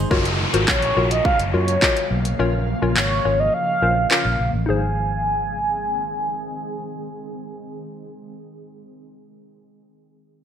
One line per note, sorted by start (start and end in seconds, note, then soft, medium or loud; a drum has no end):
0.00 0.10 D#4 medium
0.11 0.45 F#1 loud
0.11 4.64 C#3 medium
0.11 2.37 F#3 medium
0.11 4.64 A#3 medium
0.11 0.41 F4 medium
0.11 0.41 F#4 medium
0.11 0.42 A#4 medium
0.11 0.42 C#5 loud
0.11 4.64 F5 medium
0.11 kick medium
0.11 downlifter medium
0.25 closed hi-hat soft
0.54 0.65 G#1 medium
0.54 0.84 F4 medium
0.54 0.84 F#4 medium
0.54 0.84 A#4 medium
0.54 0.85 C5 medium
0.54 closed hi-hat medium
0.68 1.08 C#5 medium
0.68 kick loud
0.68 clap loud
0.82 closed hi-hat soft
0.96 1.19 A#1 medium
0.96 1.37 F4 medium
0.96 1.37 F#4 medium
0.96 1.37 A#4 medium
0.96 1.38 C#5 medium
1.11 1.24 D#5 loud
1.11 closed hi-hat medium
1.25 1.38 F5 loud
1.25 kick loud
1.39 1.51 F#1 medium
1.39 closed hi-hat medium
1.53 1.76 F#2 loud
1.53 1.74 F4 medium
1.53 1.74 F#4 medium
1.53 1.74 A#4 medium
1.53 2.07 C#5 medium
1.53 1.74 C#5 medium
1.68 closed hi-hat medium
1.82 2.23 F4 medium
1.82 2.23 F#4 medium
1.82 2.23 A#4 medium
1.82 2.23 D#5 medium
1.82 kick loud
1.82 clap loud
1.97 closed hi-hat medium
2.11 2.33 B1 medium
2.25 closed hi-hat medium
2.39 2.73 A#1 loud
2.39 4.66 F3 medium
2.39 2.70 C#4 medium
2.39 2.70 F4 medium
2.39 2.70 A#4 medium
2.39 2.70 C#5 loud
2.82 2.94 A#1 medium
2.82 3.13 C#4 medium
2.82 3.13 F4 medium
2.82 3.13 A#4 medium
2.82 3.13 C#5 medium
2.97 3.19 G#1 medium
2.97 3.41 C#5 medium
2.97 clap loud
3.25 3.48 G#1 medium
3.25 3.66 C#4 medium
3.25 3.66 F4 medium
3.25 3.66 A#4 medium
3.25 3.66 C#5 medium
3.40 3.53 D#5 medium
3.54 4.07 F5 loud
3.82 4.05 A#1 medium
3.82 4.03 C#4 medium
3.82 4.03 F4 medium
3.82 4.03 A#4 medium
3.82 4.03 C5 medium
4.11 4.52 C#4 medium
4.11 4.52 F4 medium
4.11 4.52 A#4 medium
4.11 4.52 C#5 medium
4.11 4.51 F5 medium
4.11 clap loud
4.25 4.36 A#1 medium
4.39 4.51 A#1 medium
4.54 4.65 A1 medium
4.66 8.27 G#1 medium
4.66 7.73 D#3 medium
4.66 7.73 G#3 medium
4.66 7.73 C4 medium
4.66 8.25 D#4 medium
4.66 7.73 G#4 medium
4.66 8.27 G#4 medium
4.66 8.29 C5 medium
4.66 7.73 G#5 loud